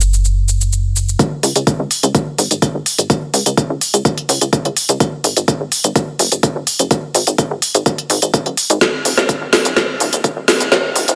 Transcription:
Already playing: analog synth bass F#1
0.01 shaker
0.14 shaker
0.25 shaker
0.49 shaker
0.61 shaker
0.73 shaker
0.96 shaker
1.09 shaker
1.19 kick, closed hi-hat, shaker
1.43 analog synth bass C#2, open hi-hat, shaker
1.56 analog synth bass C#2, closed hi-hat, shaker
1.67 kick, closed hi-hat, shaker
1.79 analog synth bass C#2
1.91 open hi-hat, shaker
2.03 analog synth bass C#2, closed hi-hat, shaker
2.15 kick, closed hi-hat, shaker
2.38 analog synth bass G#1, open hi-hat, shaker
2.51 analog synth bass G#1, closed hi-hat, shaker
2.62 kick, closed hi-hat, shaker
2.75 analog synth bass G#1
2.86 open hi-hat, shaker
2.98 analog synth bass G#1, closed hi-hat, shaker
3.10 kick, closed hi-hat, shaker
3.34 analog synth bass C#2, open hi-hat, shaker
3.46 analog synth bass C#2, closed hi-hat, shaker
3.57 kick, closed hi-hat, shaker
3.70 analog synth bass C#2
3.81 open hi-hat, shaker
3.94 analog synth bass C#2, closed hi-hat, shaker
4.05 kick, closed hi-hat, shaker
4.18 closed hi-hat
4.29 analog synth bass C#2, open hi-hat, shaker
4.41 analog synth bass C#2, closed hi-hat, shaker
4.53 kick, closed hi-hat, shaker
4.65 analog synth bass C#2, closed hi-hat
4.77 open hi-hat, shaker
4.89 analog synth bass C#2, closed hi-hat, shaker
5.00 kick, closed hi-hat, shaker
5.24 analog synth bass G#1, open hi-hat, shaker
5.37 analog synth bass G#1, closed hi-hat, shaker
5.48 kick, closed hi-hat, shaker
5.60 analog synth bass G#1
5.72 open hi-hat, shaker
5.84 analog synth bass G#1, closed hi-hat, shaker
5.96 kick, closed hi-hat, shaker
6.19 analog synth bass F#1, open hi-hat, shaker
6.32 analog synth bass F#1, closed hi-hat, shaker
6.43 kick, closed hi-hat, shaker
6.56 analog synth bass F#1
6.67 open hi-hat, shaker
6.79 analog synth bass F#1, closed hi-hat, shaker
6.91 kick, closed hi-hat, shaker
7.15 analog synth bass G#1, open hi-hat, shaker
7.27 analog synth bass G#1, closed hi-hat, shaker
7.38 kick, closed hi-hat, shaker
7.51 analog synth bass G#1
7.62 open hi-hat, shaker
7.75 analog synth bass G#1, closed hi-hat, shaker
7.86 kick, closed hi-hat, shaker
7.98 closed hi-hat
8.10 analog synth bass G#1, open hi-hat, shaker
8.22 analog synth bass G#1, closed hi-hat, shaker
8.34 kick, closed hi-hat, shaker
8.46 analog synth bass F#1, closed hi-hat
8.57 open hi-hat, shaker
8.70 analog synth bass G#1, closed hi-hat, shaker
8.81 kick, snare, closed hi-hat, shaker
9.05 analog synth bass F1, open hi-hat, shaker
9.18 analog synth bass F1, snare, closed hi-hat, shaker
9.29 kick, closed hi-hat, shaker
9.41 analog synth bass F1
9.53 snare, open hi-hat, shaker
9.65 analog synth bass F1, closed hi-hat, shaker
9.77 kick, snare, closed hi-hat, shaker
10.00 analog synth bass D#1, open hi-hat, shaker
10.13 analog synth bass D#1, closed hi-hat, shaker
10.24 kick, closed hi-hat, shaker
10.37 analog synth bass D#1
10.48 snare, open hi-hat, shaker
10.60 analog synth bass D#1, closed hi-hat, shaker
10.72 kick, snare, closed hi-hat, shaker
10.96 analog synth bass F1, open hi-hat, shaker
11.08 analog synth bass F1, closed hi-hat, shaker

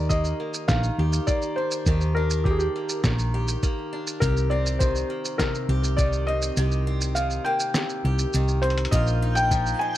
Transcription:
Already playing: fingered electric bass D#2, steel-string acoustic guitar D#3 D#4 G4, felt piano D5
0.09 steel-string acoustic guitar A#3, felt piano D#5, kick, shaker
0.24 shaker
0.40 steel-string acoustic guitar A#3
0.54 shaker
0.68 fingered electric bass A#1, steel-string acoustic guitar D#3, felt piano F5, kick, snare, shaker
0.83 shaker
0.98 fingered electric bass D#2, steel-string acoustic guitar G4
1.13 shaker
1.27 steel-string acoustic guitar A#3, felt piano D5, kick, shaker
1.42 shaker
1.56 steel-string acoustic guitar D4, felt piano C5
1.71 shaker
1.86 fingered electric bass D#2, steel-string acoustic guitar D#3 G4, kick, shaker
2.01 shaker
2.15 steel-string acoustic guitar D4, felt piano A#4
2.30 shaker
2.44 steel-string acoustic guitar A#3, felt piano G4, kick
2.51 felt piano G#4
2.58 felt piano G4, shaker
2.76 steel-string acoustic guitar A#3
2.89 shaker
3.04 fingered electric bass A#1, steel-string acoustic guitar D#3, kick, snare, shaker
3.19 shaker
3.34 steel-string acoustic guitar G4
3.48 shaker
3.63 steel-string acoustic guitar A#3, kick, shaker
3.93 steel-string acoustic guitar D4
4.07 shaker
4.20 fingered electric bass C2, steel-string acoustic guitar C3 G4, felt piano A#4, kick, shaker
4.37 shaker
4.50 steel-string acoustic guitar C4, felt piano D5
4.66 shaker
4.79 steel-string acoustic guitar D#3, felt piano C5, kick, shaker
4.95 shaker
5.10 steel-string acoustic guitar A#3
5.25 shaker
5.38 steel-string acoustic guitar C3, felt piano A#4, kick, snare, shaker
5.55 shaker
5.69 fingered electric bass C2, steel-string acoustic guitar G4
5.84 shaker
5.97 steel-string acoustic guitar D#3, felt piano D5, kick, shaker
6.13 shaker
6.27 steel-string acoustic guitar C4, felt piano D#5
6.42 shaker
6.57 fingered electric bass C2, steel-string acoustic guitar C3 G4, shaker
6.71 shaker
6.87 steel-string acoustic guitar C4
7.01 shaker
7.15 steel-string acoustic guitar D#3, felt piano F5, shaker
7.30 shaker
7.45 steel-string acoustic guitar A#3, felt piano G5
7.60 shaker
7.74 steel-string acoustic guitar C3, snare, shaker
7.89 shaker
8.04 fingered electric bass C2, steel-string acoustic guitar G4
8.19 shaker
8.33 fingered electric bass C2, steel-string acoustic guitar D#3, shaker
8.48 shaker
8.62 steel-string acoustic guitar C4, felt piano C5, closed hi-hat
8.70 closed hi-hat
8.78 closed hi-hat
8.85 closed hi-hat
8.91 fingered electric bass A#1, steel-string acoustic guitar A#2 F4, felt piano D#5, synth texture G5 G6, kick, shaker
9.07 shaker
9.22 steel-string acoustic guitar D#4
9.35 felt piano G5, shaker
9.51 steel-string acoustic guitar F3, kick, shaker
9.66 shaker
9.79 steel-string acoustic guitar G#3, felt piano G#5

